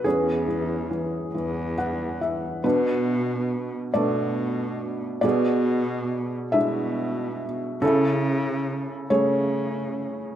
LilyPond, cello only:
\new Staff \with { instrumentName = "Cello" } { \clef bass \time 6/8 \key e \mixolydian \tempo 4. = 46 e,4. e,4. | b,4. b,4. | b,4. b,4. | cis4. cis4. | }